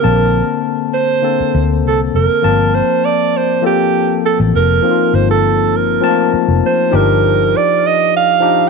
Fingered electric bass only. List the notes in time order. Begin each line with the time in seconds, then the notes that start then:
0.05 A#1
1.40 muted fingered electric bass stroke
1.54 D2
1.85 C2
2.14 F1
2.44 G1
4.40 A1
4.55 F1
5.14 G1
6.33 muted fingered electric bass stroke
6.48 F1
6.93 G1